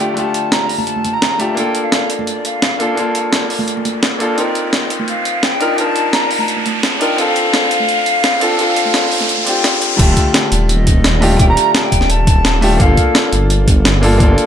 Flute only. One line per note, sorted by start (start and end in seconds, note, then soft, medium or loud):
0.00 0.14 G5 medium
0.16 0.53 A5 loud
0.51 0.80 A#5 loud
0.78 1.15 A5 loud
1.13 1.41 A#5 loud
1.39 1.58 A5 medium
1.57 1.85 G5 loud
1.83 2.11 F5 medium
2.10 2.27 D#5 medium
2.27 2.46 D5 medium
2.45 3.15 F5 medium
4.38 4.70 D5 medium
4.73 5.05 D#5 medium
5.08 5.44 F5 loud
5.43 5.80 G5 loud
5.78 6.15 A5 loud
6.13 6.41 A#5 loud
6.39 7.02 A5 loud
7.01 7.20 G5 loud
7.18 9.64 F5 loud
10.52 10.68 D5 medium
10.69 11.36 D#5 loud
11.39 11.48 G5 loud
11.48 11.73 A#5 loud
11.74 11.85 A5 loud
11.83 12.11 G5 loud
12.09 12.81 A5 loud
12.80 13.15 F5 medium